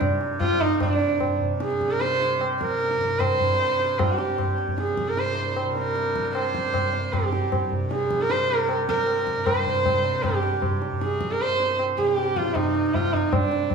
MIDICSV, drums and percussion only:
0, 0, Header, 1, 2, 480
1, 0, Start_track
1, 0, Tempo, 396040
1, 976, Time_signature, 4, 2, 24, 8
1, 8168, Tempo, 387347
1, 16854, End_track
2, 0, Start_track
2, 0, Title_t, "Tabla"
2, 9, Note_on_c, 9, 60, 80
2, 9, Note_on_c, 9, 64, 71
2, 130, Note_off_c, 9, 60, 0
2, 130, Note_off_c, 9, 64, 0
2, 253, Note_on_c, 9, 62, 60
2, 375, Note_off_c, 9, 62, 0
2, 488, Note_on_c, 9, 60, 70
2, 488, Note_on_c, 9, 64, 65
2, 610, Note_off_c, 9, 60, 0
2, 610, Note_off_c, 9, 64, 0
2, 733, Note_on_c, 9, 64, 51
2, 854, Note_off_c, 9, 64, 0
2, 975, Note_on_c, 9, 60, 98
2, 975, Note_on_c, 9, 64, 82
2, 1096, Note_off_c, 9, 60, 0
2, 1096, Note_off_c, 9, 64, 0
2, 1218, Note_on_c, 9, 62, 68
2, 1339, Note_off_c, 9, 62, 0
2, 1459, Note_on_c, 9, 60, 70
2, 1459, Note_on_c, 9, 64, 60
2, 1580, Note_off_c, 9, 60, 0
2, 1580, Note_off_c, 9, 64, 0
2, 1699, Note_on_c, 9, 64, 51
2, 1820, Note_off_c, 9, 64, 0
2, 1942, Note_on_c, 9, 62, 85
2, 2063, Note_off_c, 9, 62, 0
2, 2063, Note_on_c, 9, 62, 57
2, 2185, Note_off_c, 9, 62, 0
2, 2193, Note_on_c, 9, 37, 57
2, 2314, Note_off_c, 9, 37, 0
2, 2317, Note_on_c, 9, 62, 57
2, 2436, Note_off_c, 9, 62, 0
2, 2436, Note_on_c, 9, 62, 74
2, 2557, Note_off_c, 9, 62, 0
2, 2688, Note_on_c, 9, 62, 53
2, 2809, Note_off_c, 9, 62, 0
2, 2920, Note_on_c, 9, 60, 74
2, 3041, Note_off_c, 9, 60, 0
2, 3162, Note_on_c, 9, 37, 53
2, 3280, Note_on_c, 9, 62, 51
2, 3283, Note_off_c, 9, 37, 0
2, 3396, Note_off_c, 9, 62, 0
2, 3396, Note_on_c, 9, 62, 71
2, 3517, Note_off_c, 9, 62, 0
2, 3522, Note_on_c, 9, 62, 55
2, 3643, Note_off_c, 9, 62, 0
2, 3648, Note_on_c, 9, 37, 56
2, 3759, Note_on_c, 9, 62, 50
2, 3769, Note_off_c, 9, 37, 0
2, 3880, Note_off_c, 9, 62, 0
2, 3881, Note_on_c, 9, 60, 84
2, 3881, Note_on_c, 9, 64, 67
2, 4003, Note_off_c, 9, 60, 0
2, 4003, Note_off_c, 9, 64, 0
2, 4124, Note_on_c, 9, 64, 53
2, 4245, Note_off_c, 9, 64, 0
2, 4360, Note_on_c, 9, 60, 76
2, 4481, Note_off_c, 9, 60, 0
2, 4601, Note_on_c, 9, 62, 58
2, 4723, Note_off_c, 9, 62, 0
2, 4840, Note_on_c, 9, 60, 98
2, 4840, Note_on_c, 9, 64, 80
2, 4961, Note_off_c, 9, 60, 0
2, 4961, Note_off_c, 9, 64, 0
2, 5072, Note_on_c, 9, 62, 69
2, 5193, Note_off_c, 9, 62, 0
2, 5313, Note_on_c, 9, 60, 74
2, 5313, Note_on_c, 9, 64, 59
2, 5434, Note_off_c, 9, 60, 0
2, 5434, Note_off_c, 9, 64, 0
2, 5550, Note_on_c, 9, 62, 51
2, 5670, Note_on_c, 9, 64, 46
2, 5671, Note_off_c, 9, 62, 0
2, 5791, Note_off_c, 9, 64, 0
2, 5791, Note_on_c, 9, 62, 74
2, 5908, Note_off_c, 9, 62, 0
2, 5908, Note_on_c, 9, 62, 55
2, 6028, Note_on_c, 9, 37, 61
2, 6029, Note_off_c, 9, 62, 0
2, 6149, Note_off_c, 9, 37, 0
2, 6149, Note_on_c, 9, 62, 57
2, 6269, Note_off_c, 9, 62, 0
2, 6269, Note_on_c, 9, 62, 69
2, 6390, Note_off_c, 9, 62, 0
2, 6507, Note_on_c, 9, 62, 58
2, 6629, Note_off_c, 9, 62, 0
2, 6744, Note_on_c, 9, 60, 73
2, 6866, Note_off_c, 9, 60, 0
2, 6981, Note_on_c, 9, 62, 49
2, 7102, Note_off_c, 9, 62, 0
2, 7214, Note_on_c, 9, 62, 77
2, 7335, Note_off_c, 9, 62, 0
2, 7338, Note_on_c, 9, 62, 53
2, 7459, Note_off_c, 9, 62, 0
2, 7461, Note_on_c, 9, 37, 51
2, 7580, Note_on_c, 9, 62, 51
2, 7582, Note_off_c, 9, 37, 0
2, 7695, Note_on_c, 9, 60, 81
2, 7701, Note_off_c, 9, 62, 0
2, 7816, Note_off_c, 9, 60, 0
2, 7933, Note_on_c, 9, 37, 61
2, 8054, Note_off_c, 9, 37, 0
2, 8168, Note_on_c, 9, 60, 70
2, 8168, Note_on_c, 9, 64, 68
2, 8292, Note_off_c, 9, 60, 0
2, 8292, Note_off_c, 9, 64, 0
2, 8409, Note_on_c, 9, 62, 59
2, 8533, Note_off_c, 9, 62, 0
2, 8657, Note_on_c, 9, 60, 86
2, 8657, Note_on_c, 9, 64, 90
2, 8780, Note_off_c, 9, 60, 0
2, 8780, Note_off_c, 9, 64, 0
2, 8893, Note_on_c, 9, 62, 70
2, 9017, Note_off_c, 9, 62, 0
2, 9138, Note_on_c, 9, 60, 76
2, 9138, Note_on_c, 9, 64, 68
2, 9262, Note_off_c, 9, 60, 0
2, 9262, Note_off_c, 9, 64, 0
2, 9374, Note_on_c, 9, 64, 50
2, 9498, Note_off_c, 9, 64, 0
2, 9618, Note_on_c, 9, 62, 80
2, 9740, Note_off_c, 9, 62, 0
2, 9740, Note_on_c, 9, 62, 47
2, 9861, Note_on_c, 9, 37, 55
2, 9864, Note_off_c, 9, 62, 0
2, 9974, Note_on_c, 9, 62, 57
2, 9985, Note_off_c, 9, 37, 0
2, 10096, Note_off_c, 9, 62, 0
2, 10096, Note_on_c, 9, 62, 80
2, 10220, Note_off_c, 9, 62, 0
2, 10340, Note_on_c, 9, 62, 48
2, 10464, Note_off_c, 9, 62, 0
2, 10581, Note_on_c, 9, 60, 68
2, 10705, Note_off_c, 9, 60, 0
2, 10832, Note_on_c, 9, 37, 58
2, 10943, Note_on_c, 9, 62, 54
2, 10955, Note_off_c, 9, 37, 0
2, 11056, Note_on_c, 9, 60, 65
2, 11067, Note_off_c, 9, 62, 0
2, 11180, Note_off_c, 9, 60, 0
2, 11303, Note_on_c, 9, 37, 60
2, 11427, Note_off_c, 9, 37, 0
2, 11545, Note_on_c, 9, 60, 84
2, 11545, Note_on_c, 9, 64, 72
2, 11669, Note_off_c, 9, 60, 0
2, 11669, Note_off_c, 9, 64, 0
2, 11789, Note_on_c, 9, 64, 54
2, 11913, Note_off_c, 9, 64, 0
2, 12030, Note_on_c, 9, 60, 69
2, 12030, Note_on_c, 9, 64, 72
2, 12154, Note_off_c, 9, 60, 0
2, 12154, Note_off_c, 9, 64, 0
2, 12268, Note_on_c, 9, 62, 58
2, 12392, Note_off_c, 9, 62, 0
2, 12504, Note_on_c, 9, 60, 86
2, 12504, Note_on_c, 9, 64, 93
2, 12628, Note_off_c, 9, 60, 0
2, 12628, Note_off_c, 9, 64, 0
2, 12741, Note_on_c, 9, 62, 74
2, 12865, Note_off_c, 9, 62, 0
2, 12979, Note_on_c, 9, 60, 76
2, 12979, Note_on_c, 9, 64, 63
2, 13103, Note_off_c, 9, 60, 0
2, 13103, Note_off_c, 9, 64, 0
2, 13222, Note_on_c, 9, 62, 54
2, 13346, Note_off_c, 9, 62, 0
2, 13347, Note_on_c, 9, 64, 50
2, 13464, Note_on_c, 9, 62, 78
2, 13471, Note_off_c, 9, 64, 0
2, 13586, Note_off_c, 9, 62, 0
2, 13586, Note_on_c, 9, 62, 53
2, 13703, Note_on_c, 9, 37, 59
2, 13710, Note_off_c, 9, 62, 0
2, 13825, Note_on_c, 9, 62, 54
2, 13827, Note_off_c, 9, 37, 0
2, 13947, Note_off_c, 9, 62, 0
2, 13947, Note_on_c, 9, 62, 70
2, 14071, Note_off_c, 9, 62, 0
2, 14189, Note_on_c, 9, 62, 55
2, 14312, Note_off_c, 9, 62, 0
2, 14430, Note_on_c, 9, 60, 82
2, 14554, Note_off_c, 9, 60, 0
2, 14663, Note_on_c, 9, 37, 53
2, 14787, Note_off_c, 9, 37, 0
2, 14789, Note_on_c, 9, 62, 52
2, 14907, Note_off_c, 9, 62, 0
2, 14907, Note_on_c, 9, 62, 65
2, 15018, Note_off_c, 9, 62, 0
2, 15018, Note_on_c, 9, 62, 52
2, 15138, Note_on_c, 9, 37, 53
2, 15142, Note_off_c, 9, 62, 0
2, 15254, Note_on_c, 9, 62, 56
2, 15262, Note_off_c, 9, 37, 0
2, 15371, Note_on_c, 9, 60, 79
2, 15371, Note_on_c, 9, 64, 70
2, 15377, Note_off_c, 9, 62, 0
2, 15495, Note_off_c, 9, 60, 0
2, 15495, Note_off_c, 9, 64, 0
2, 15615, Note_on_c, 9, 62, 56
2, 15739, Note_off_c, 9, 62, 0
2, 15856, Note_on_c, 9, 60, 67
2, 15856, Note_on_c, 9, 64, 65
2, 15979, Note_off_c, 9, 60, 0
2, 15979, Note_off_c, 9, 64, 0
2, 16090, Note_on_c, 9, 64, 46
2, 16214, Note_off_c, 9, 64, 0
2, 16331, Note_on_c, 9, 60, 102
2, 16331, Note_on_c, 9, 64, 98
2, 16455, Note_off_c, 9, 60, 0
2, 16455, Note_off_c, 9, 64, 0
2, 16563, Note_on_c, 9, 62, 86
2, 16687, Note_off_c, 9, 62, 0
2, 16798, Note_on_c, 9, 60, 75
2, 16798, Note_on_c, 9, 64, 78
2, 16854, Note_off_c, 9, 60, 0
2, 16854, Note_off_c, 9, 64, 0
2, 16854, End_track
0, 0, End_of_file